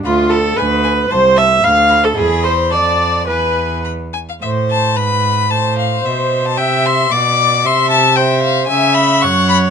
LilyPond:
<<
  \new Staff \with { instrumentName = "Violin" } { \time 2/4 \key a \minor \tempo 4 = 112 b''8 b''8 gis''8 gis''8 | a''8 a''8 b''8 b''8 | b''4 a''4 | gis''4 b''8 gis''16 f''16 |
e''8 a''8 b''4 | a''8 f''8 e''8. a''16 | g''8 c'''8 d'''4 | c'''8 a''8 g''8 f''8 |
\key cis \phrygian gis''8 b''8 cis'''8 b''8 | }
  \new Staff \with { instrumentName = "Viola" } { \time 2/4 \key a \minor f'8 a'8 b'4 | c''8 e''8 f''8. a'16 | gis'8 c''8 d''4 | b'4 r4 |
c''4 b'4 | c''4 c''4 | e''4 d''4 | e''4 c''4 |
\key cis \phrygian e''4 cis''4 | }
  \new Staff \with { instrumentName = "Violin" } { \time 2/4 \key a \minor f'8 a'8 b'4 | c''8 e''8 f''8. a'16 | gis'8 c''8 d''4 | b'4 r4 |
c''4 b'4 | c''2 | e''4 d''4 | e''4 e''4 |
\key cis \phrygian e''4 fis''4 | }
  \new Staff \with { instrumentName = "Cello" } { \clef bass \time 2/4 \key a \minor d,4 d,4 | c,4 d,4 | e,4 f,4 | e,4. r8 |
a,4 gis,4 | a,4 b,4 | c4 b,4 | c2 |
\key cis \phrygian cis4 fis,4 | }
>>